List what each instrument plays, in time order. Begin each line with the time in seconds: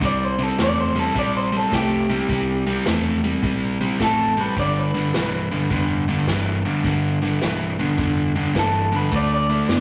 0.01 fingered electric bass C2, overdriven electric guitar C3 G3, clean electric guitar D5, kick, snare, closed hi-hat
0.24 clean electric guitar C5
0.39 overdriven electric guitar C3 G3, closed hi-hat
0.43 clean electric guitar A4
0.58 fingered electric bass E2, overdriven electric guitar C3 A3, clean electric guitar D5, snare, closed hi-hat
0.81 clean electric guitar C5
0.95 overdriven electric guitar C3 G3, closed hi-hat
0.99 clean electric guitar A4
1.15 fingered electric bass A#1, overdriven electric guitar C3 G3, clean electric guitar D5, kick, closed hi-hat
1.37 clean electric guitar C5
1.52 overdriven electric guitar C3 G3, closed hi-hat
1.57 clean electric guitar A4
1.72 fingered electric bass C2, overdriven electric guitar C3 A3, clean electric guitar G4, kick, snare, closed hi-hat
2.09 overdriven electric guitar C3 G3, closed hi-hat
2.29 fingered electric bass C2, overdriven electric guitar C3 G3, kick, closed hi-hat
2.66 overdriven electric guitar C3 G3, closed hi-hat
2.85 fingered electric bass E2, overdriven electric guitar C3 A3, snare, closed hi-hat
3.23 overdriven electric guitar C3 G3, closed hi-hat
3.43 fingered electric bass A#1, overdriven electric guitar C3 G3, kick, closed hi-hat
3.80 overdriven electric guitar C3 G3, closed hi-hat
4.00 fingered electric bass A1, overdriven electric guitar C3 A3, clean electric guitar A4, kick, snare, closed hi-hat
4.37 overdriven electric guitar C3 G3, clean electric guitar B4, closed hi-hat
4.57 fingered electric bass G1, overdriven electric guitar G2 D3, clean electric guitar D5, kick, closed hi-hat
4.79 clean electric guitar B4
4.94 overdriven electric guitar G2 D3, snare, closed hi-hat
5.14 fingered electric bass B1, overdriven electric guitar G2 E3, snare, closed hi-hat
5.51 overdriven electric guitar G2 D3, closed hi-hat
5.70 fingered electric bass F1, overdriven electric guitar G2 D3, kick, closed hi-hat
6.07 overdriven electric guitar G2 D3, closed hi-hat
6.27 fingered electric bass G1, overdriven electric guitar G2 E3, kick, snare, closed hi-hat
6.65 overdriven electric guitar G2 D3, closed hi-hat
6.84 fingered electric bass G1, overdriven electric guitar G2 D3, kick, snare, closed hi-hat
7.21 overdriven electric guitar G2 D3, snare, closed hi-hat
7.41 fingered electric bass B1, overdriven electric guitar G2 E3, snare, closed hi-hat
7.79 overdriven electric guitar G2 D3, closed hi-hat
7.98 fingered electric bass F1, overdriven electric guitar G2 D3, kick, closed hi-hat
8.35 overdriven electric guitar G2 D3, closed hi-hat
8.54 fingered electric bass G1, overdriven electric guitar G2 E3, kick, snare, closed hi-hat
8.59 clean electric guitar A4
8.92 overdriven electric guitar G2 D3, closed hi-hat
8.96 clean electric guitar B4
9.12 fingered electric bass D2, overdriven electric guitar D3 A3, kick, closed hi-hat
9.16 clean electric guitar D5
9.34 clean electric guitar D5
9.49 overdriven electric guitar D3 A3, snare, closed hi-hat
9.68 fingered electric bass F#2, overdriven electric guitar D3 B3, snare, closed hi-hat